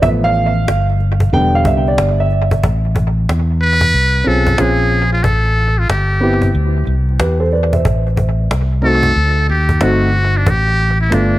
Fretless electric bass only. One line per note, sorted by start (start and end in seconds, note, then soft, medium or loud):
0.03 0.65 A1 loud
0.68 1.30 G1 medium
1.33 1.64 E1 loud
1.65 1.96 C2 loud
1.98 2.60 G1 medium
2.64 3.26 A1 loud
3.29 3.91 E2 medium
3.94 4.25 C2 medium
4.27 4.58 B1 medium
4.59 5.21 A#1 loud
5.24 5.86 A1 loud
5.89 6.52 G1 medium
6.55 6.86 D2 loud
6.87 7.18 C2 loud
7.20 7.82 E2 medium
7.85 8.47 A1 loud
8.51 9.13 C2 medium
9.16 9.47 D2 loud
9.49 9.80 D#2 loud
9.82 10.43 G1 loud
10.47 11.08 A1 loud
11.12 11.39 G1 loud